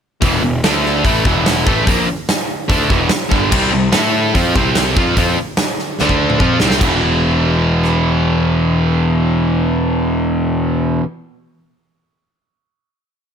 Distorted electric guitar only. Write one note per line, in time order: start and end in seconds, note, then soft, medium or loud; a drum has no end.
0.21 0.41 E2 medium
0.21 0.42 B2 medium
0.21 0.42 E3 loud
0.42 0.59 E2 medium
0.42 0.59 B2 medium
0.64 1.04 D3 medium
0.64 1.04 A3 medium
0.64 1.05 D4 loud
1.04 1.24 A2 medium
1.04 1.25 E3 medium
1.04 1.25 A3 medium
1.25 1.66 E2 medium
1.25 1.65 B2 medium
1.25 1.65 E3 loud
1.65 1.86 A2 medium
1.65 1.86 E3 loud
1.65 1.87 A3 loud
1.86 2.07 A#2 medium
1.86 2.07 F3 loud
1.86 2.07 A#3 loud
2.68 2.89 D3 medium
2.68 2.89 A3 medium
2.68 2.89 D4 loud
2.89 3.08 E2 medium
2.89 3.10 B2 loud
2.89 3.10 E3 loud
3.10 muted distorted electric guitar stroke soft
3.29 3.50 G2 medium
3.29 3.50 D3 medium
3.29 3.49 G3 medium
3.50 3.70 C3 medium
3.50 3.70 G3 loud
3.50 3.72 C4 loud
3.71 3.89 C3 medium
3.71 3.89 G3 medium
3.92 4.33 A3 medium
3.92 4.34 E4 loud
3.92 4.34 A4 loud
4.35 4.55 F3 medium
4.35 4.55 C4 medium
4.35 4.55 F4 medium
4.55 4.96 C3 loud
4.55 4.96 G3 loud
4.55 4.96 C4 loud
4.96 5.16 F3 medium
4.96 5.16 C4 medium
4.96 5.17 F4 loud
5.18 5.37 F3 medium
5.18 5.38 C4 loud
5.18 5.37 F4 loud
6.00 6.39 D3 medium
6.00 6.40 A3 medium
6.00 6.40 D4 medium
6.40 6.60 F3 medium
6.40 6.60 C4 medium
6.40 6.60 F4 medium
6.60 6.80 C3 medium
6.60 6.81 G3 loud
6.60 6.81 C4 medium
6.80 11.02 E2 medium
6.80 11.04 B2 medium
6.80 11.06 E3 loud